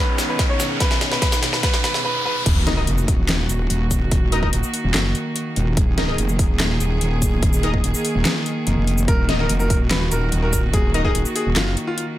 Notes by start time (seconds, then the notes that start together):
Already playing: B2 D#3 B3 C#4 D#4 G#4 B4 C#5 F#5, riser
0.18 snare, closed hi-hat, shaker
0.29 B4
0.39 kick, snare, closed hi-hat
0.49 C#5
0.60 snare, closed hi-hat, shaker
0.80 B4, kick, snare, closed hi-hat
0.91 snare
1.01 snare, closed hi-hat
1.11 B4, snare
1.22 B4, kick, snare, closed hi-hat
1.32 snare, shaker
1.43 snare, open hi-hat
1.53 B4, snare
1.63 B4, kick, snare, closed hi-hat
1.74 snare
1.84 B4, snare, closed hi-hat
1.94 snare
2.05 B4
2.25 B4
2.46 D#1 D#3 A#3 F#4, kick, closed hi-hat, crash, sub drop
2.67 D#4 A#4 D#5, snare, closed hi-hat
2.77 D#4 A#4 D#5
2.87 F1, closed hi-hat
2.98 shaker
3.08 D#1, kick, open hi-hat
3.29 snare, clap, closed hi-hat
3.49 D#1, closed hi-hat, shaker
3.70 D#1, closed hi-hat
3.91 kick, closed hi-hat, shaker
4.11 D#1, kick, closed hi-hat
4.32 D#4 A#4 D#5, closed hi-hat
4.43 D#4 A#4 D#5, kick
4.53 D#1, closed hi-hat
4.63 shaker
4.74 open hi-hat
4.84 D#1
4.94 F#1, snare, clap, closed hi-hat
5.15 closed hi-hat
5.36 closed hi-hat
5.56 D#1, closed hi-hat
5.77 D#1 G#4, kick, closed hi-hat
5.98 D#4 A#4 D#5, snare, closed hi-hat
6.08 D#4 A#4 D#5
6.18 F1, closed hi-hat
6.29 shaker
6.39 D#1, kick, open hi-hat
6.60 snare, clap, closed hi-hat
6.80 D#1, closed hi-hat, shaker
7.01 D#1, closed hi-hat
7.22 kick, closed hi-hat, shaker
7.43 D#1, kick, closed hi-hat
7.53 shaker
7.63 D#4 A#4 D#5, closed hi-hat
7.74 kick
7.84 D#1, closed hi-hat
7.94 shaker
8.05 open hi-hat
8.15 D#1
8.25 snare, clap, closed hi-hat
8.46 closed hi-hat
8.67 F1, closed hi-hat
8.77 F1
8.87 closed hi-hat
8.98 shaker
9.08 D#1 F#4 A#4, kick, closed hi-hat
9.29 D#4 A#4 D#5, snare, closed hi-hat
9.39 D#4 A#4 D#5
9.49 F1, closed hi-hat
9.60 A#4, shaker
9.70 D#1, kick, open hi-hat
9.91 B4, snare, clap, closed hi-hat
10.12 D#1 A#4, closed hi-hat, shaker
10.32 D#1, closed hi-hat
10.43 A#4
10.53 kick, closed hi-hat, shaker
10.74 D#1 G#4, kick, closed hi-hat
10.94 D#4 A#4 D#5, closed hi-hat
11.05 D#4 G#4 A#4 D#5, kick
11.15 D#1, closed hi-hat
11.25 shaker
11.36 G#4, open hi-hat
11.46 D#1
11.56 F#1 F4, snare, clap, closed hi-hat
11.77 closed hi-hat
11.87 F4
11.98 closed hi-hat